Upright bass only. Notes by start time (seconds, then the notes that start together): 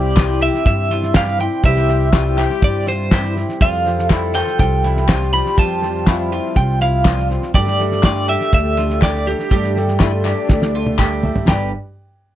Already playing: C2
0.66 G2
1.64 C2
2.63 G2
3.61 F2
4.59 C2
5.58 F2
6.56 C2
7.54 G2
8.53 D2
9.51 G2
10.50 D2
11.49 G1